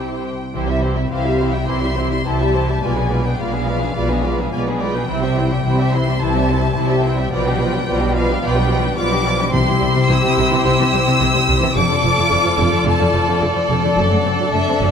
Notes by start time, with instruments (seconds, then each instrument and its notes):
Already playing: double bass section C2, cello section C3, harp C3 G3 C4 E4 C5, viola section E4, french horn section E4 G4, violin section G4 C5
0.00 harp G4, violin section G5
0.17 harp C5
0.35 harp E4
0.54 double bass section C2, harp C3, cello section C3, viola section E3 E4, violin section G4 C5
0.68 viola section G3 G4, violin section E4 E5
0.73 harp G3
0.81 viola section E3 E4, violin section G4 C5
0.93 harp C4, violin section E4
0.97 viola section G3 G4, violin section E5
1.11 double bass section C2, cello section C3, viola section E3 E4, violin section G4 C5 F5, harp G4
1.25 viola section G3 G4, violin section E4 E5
1.31 harp C4
1.40 viola section E3 E4, violin section G4 C5
1.50 harp G3, viola section G3 G4, violin section E4 E5 G5
1.68 double bass section C2, cello section C3, harp C3, viola section E3 E4, violin section G4 C5 C6
1.82 viola section G3 G4, violin section E4 E5
1.88 harp C4
1.96 viola section E3 E4, violin section G4 C5
2.07 harp G3, violin section E4 E5
2.11 viola section G3 G4, violin section C6
2.25 double bass section C2, cello section C3, viola section E3 E4, violin section G4 C5 A5, harp G4
2.40 viola section G3 G4, violin section E4 E5
2.45 harp C4
2.54 viola section E3 E4, violin section G4 C5
2.63 harp G3
2.68 viola section G3 G4, violin section E4 E5
2.82 double bass section B1, harp B2, cello section B2, viola section G#3 F4, violin section B4 D5 G#5
2.96 viola section B3 D4, violin section G#4 B4
3.01 harp F3
3.10 viola section G#3 F4, violin section B4 D5
3.19 harp G#3
3.24 viola section B3 D4, violin section G#4 B4 G5
3.38 double bass section B1, cello section B2, viola section G#3 F4, harp F4, violin section B4 D5 F5
3.52 viola section B3 D4, violin section G#4 B4
3.57 harp G#3
3.66 viola section G#3 F4, violin section B4 D5
3.76 harp F3
3.81 viola section B3 D4, violin section G#4 B4
3.95 double bass section B1, harp B2, cello section B2, viola section G#3 F4, violin section B4 D5
4.09 viola section B3 D4, violin section G#4 B4
4.14 harp G#3
4.23 viola section G#3 F4, violin section B4 D5
4.33 harp F3
4.38 viola section B3 D4, violin section G#4 B4
4.51 double bass section B1, cello section B2, viola section G#3 F4, harp F4, violin section B4 D5 G#5
4.66 viola section B3 D4, violin section G#4 B4
4.71 harp G#3
4.81 viola section G#3 F4, violin section B4 D5 G5
4.89 harp F3
4.95 viola section B3 D4, violin section G#4 B4
5.08 double bass section C2, harp C3, cello section C3, viola section E3 E4, violin section E4 C5
5.23 viola section G3 C4, violin section G4 E5
5.27 harp G3
5.37 viola section E3 E4, violin section E4 C5
5.46 harp C4
5.51 viola section G3 C4, violin section G4 E5
5.64 double bass section C2, cello section C3, viola section E3 E4, violin section E4 C5, harp G4
5.80 viola section G3 C4, harp C4, violin section G4 E5
5.93 viola section E3 E4, violin section E4 C5 C6
6.03 harp G3
6.07 viola section G3 C4, violin section G4 E5
6.20 double bass section C2, cello section C3, harp C3, viola section E3 E4, violin section E4 C5 A5
6.35 viola section G3 C4, violin section G4 E5
6.40 harp C4
6.49 viola section E3 E4, violin section E4 C5
6.58 harp G3
6.63 viola section G3 C4, violin section G4 E5
6.76 double bass section C2, cello section C3, viola section E3 E4, violin section E4 C5, harp G4
6.90 viola section G3 C4, violin section G4 E5
6.95 harp C4
7.04 viola section E3 E4, violin section E4 C5 G5
7.14 harp G3
7.18 viola section G3 C4, violin section G4 E5
7.32 double bass section B1, harp B2, cello section B2, viola section F3 F4, violin section B4 D5 G5
7.46 viola section G3 D4, violin section G4 B4
7.51 harp F3
7.59 viola section F3 F4, violin section B4 D5
7.69 harp G3, violin section G4 B4
7.74 viola section G3 D4
7.87 double bass section B1, cello section B2, viola section F3 F4, harp F4, violin section B4 D5
8.01 viola section G3 D4, violin section G4 B4
8.06 harp G3
8.15 viola section F3 F4, violin section B4 D5 F5
8.24 harp F3
8.29 viola section G3 D4, violin section G4 B4
8.43 double bass section B1, harp B2, cello section B2, viola section F3 F4, violin section B4 D5 G5
8.56 viola section G3 D4, violin section G4 B4
8.61 harp G3
8.70 viola section F3 F4, violin section B4 D5
8.79 harp F3
8.84 viola section G3 D4, violin section G4 B4
8.97 double bass section B1, cello section B2, viola section F3 F4, harp F4, violin section B4 D5 D6
9.11 viola section G3 D4, violin section G4 B4
9.17 harp G3
9.25 viola section F3 F4, violin section B4 D5
9.36 harp F3, viola section G3 D4, violin section G4 B4
9.52 double bass section C2, viola section C3 E4, cello section C3, timpani C3, harp C3, violin section G4 C5 C6
9.67 cello section C3, viola section E3
9.72 harp G3
9.80 double bass section C2, cello section C3, viola section G3
9.91 viola section C3, harp C4
9.95 cello section C3
10.08 double bass section C2, cello section C3, viola section E3, harp G4, violin section E6
10.23 cello section C3, viola section G3
10.28 harp C4
10.37 double bass section C2, viola section C3, cello section C3
10.47 harp G3
10.51 cello section C3, viola section E3
10.64 double bass section C2, viola section C3, harp C3, cello section C3, violin section E6
10.80 cello section C3, viola section E3, harp C4
10.93 double bass section C2, cello section C3, viola section G3
11.02 harp G3
11.07 cello section C3, viola section C3
11.21 double bass section C2, cello section C3, viola section E3, harp G4
11.35 cello section C3, viola section G3
11.39 harp C4
11.48 double bass section C2, viola section C3, cello section C3
11.57 harp G3
11.62 cello section C3, viola section E3
11.75 double bass section F1, harp F2, cello section F2, viola section D3 F4, violin section A4 D5 D6
11.90 cello section F2, viola section D3
11.94 harp F3
12.04 double bass section F1, cello section F2, viola section F3
12.12 harp A3
12.17 cello section F2, viola section D3
12.31 double bass section F1, cello section F2, viola section D3, harp A4
12.44 cello section F2, viola section F3
12.49 harp A3
12.58 double bass section F1, cello section F2, viola section D3
12.67 harp F3
12.71 cello section F2, viola section D3
12.85 double bass section F1, harp F2, cello section F2, viola section D3, violin section A5
12.99 cello section F2, viola section D3
13.04 harp A3
13.13 double bass section F1, cello section F2, viola section F3
13.23 harp F3
13.27 cello section F2, viola section D3
13.41 double bass section F1, cello section F2, viola section D3, harp A4
13.55 cello section F2, viola section F3
13.60 harp A3
13.69 double bass section F1, cello section F2, viola section D3
13.79 harp F3
13.84 cello section F2, viola section D3
13.97 double bass section F#1, harp F#2, cello section F#2, viola section F#3 D4
14.11 cello section F#2, viola section A3
14.16 harp F#3
14.25 double bass section F#1, cello section F#2, viola section C4
14.35 harp C4
14.39 cello section F#2, viola section F#3
14.53 double bass section F#1, cello section F#2, viola section A3, harp A4, violin section E5
14.68 cello section F#2, viola section C4
14.72 harp C4
14.81 double bass section F#1, cello section F#2, viola section F#3